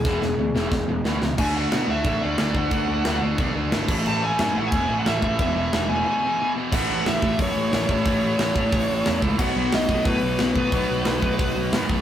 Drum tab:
CC |--------|x-x-x-x-|x-x-x-xx|x-x-x-x-|
HH |--------|--------|--------|--------|
SD |oo-oo-oo|--o---o-|--o---o-|--o---o-|
BD |o---o---|o---o--o|o---o--o|----o--o|

CC |x-x-----|x-------|--------|x-------|
HH |--------|--o-o-o-|o-o-o-o-|--o-o-o-|
SD |--o-----|--o---o-|--o---o-|--o---o-|
BD |o-------|o--oo--o|o--oo--o|o--oo--o|

CC |--------|
HH |o-o-o-o-|
SD |--o---o-|
BD |o--oo--o|